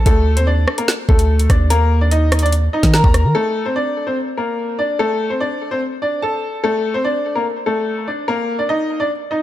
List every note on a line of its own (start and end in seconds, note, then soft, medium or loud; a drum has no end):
0.06 0.38 D2 loud
0.06 0.35 A3 medium
0.06 0.35 A4 loud
0.06 kick loud
0.06 closed hi-hat medium
0.37 0.66 D#2 loud
0.37 0.46 C4 medium
0.37 0.46 C5 medium
0.37 closed hi-hat medium
0.47 0.76 D4 medium
0.47 0.76 D5 medium
0.68 cross-stick loud
0.78 0.87 A#3 medium
0.78 0.87 A#4 medium
0.78 closed hi-hat medium
0.88 snare loud
1.09 1.48 D2 loud
1.09 1.48 A3 medium
1.09 1.47 A4 medium
1.09 kick loud
1.19 closed hi-hat medium
1.40 closed hi-hat medium
1.50 2.69 D#2 loud
1.50 1.68 D4 medium
1.50 1.68 D5 medium
1.50 kick medium
1.50 cross-stick medium
1.50 closed hi-hat medium
1.70 2.00 A#3 medium
1.70 1.99 A#4 loud
1.70 closed hi-hat medium
2.01 2.11 D4 medium
2.01 2.10 D5 medium
2.11 2.41 D#4 medium
2.11 2.40 D#5 medium
2.11 closed hi-hat medium
2.32 cross-stick loud
2.32 closed hi-hat medium
2.39 2.51 D5 medium
2.39 closed hi-hat medium
2.43 2.52 D4 medium
2.43 closed hi-hat soft
2.53 closed hi-hat medium
2.73 2.91 D#4 medium
2.73 2.91 D#5 medium
2.83 3.03 D#3 loud
2.83 kick medium
2.83 snare medium
2.83 closed hi-hat medium
2.94 3.33 A#4 medium
2.94 3.32 A#5 medium
2.94 snare loud
3.04 3.26 D#2 loud
3.04 kick loud
3.14 cross-stick medium
3.14 closed hi-hat medium
3.24 3.34 D#3 loud
3.35 3.64 A3 medium
3.35 3.64 A4 loud
3.66 3.75 C4 medium
3.66 3.74 C5 medium
3.76 4.05 D4 medium
3.76 4.05 D5 medium
4.07 4.16 C4 medium
4.07 4.16 C5 medium
4.37 4.77 A#3 medium
4.37 4.76 A#4 medium
4.79 4.97 D4 medium
4.79 4.96 D5 medium
4.99 5.29 A3 medium
4.99 5.28 A4 loud
5.30 5.39 C4 medium
5.30 5.39 C5 medium
5.40 5.70 D4 medium
5.40 5.69 D5 medium
5.71 5.80 C4 medium
5.71 5.80 C5 medium
6.02 6.20 D4 medium
6.02 6.20 D5 medium
6.22 6.61 A4 medium
6.22 6.61 A5 medium
6.64 6.93 A3 medium
6.64 6.93 A4 medium
6.94 7.04 C4 medium
6.94 7.03 C5 medium
7.04 7.34 D4 medium
7.04 7.34 D5 medium
7.36 7.45 A#3 medium
7.36 7.44 A#4 medium
7.66 8.05 A3 medium
7.66 8.05 A4 medium
8.08 8.26 D4 medium
8.08 8.25 D5 medium
8.28 8.57 A#3 medium
8.28 8.57 A#4 loud
8.59 8.68 D4 medium
8.59 8.68 D5 medium
8.69 8.98 D#4 medium
8.69 8.98 D#5 medium
9.00 9.09 D4 medium
9.00 9.09 D5 medium
9.31 9.42 D#4 medium
9.31 9.42 D#5 medium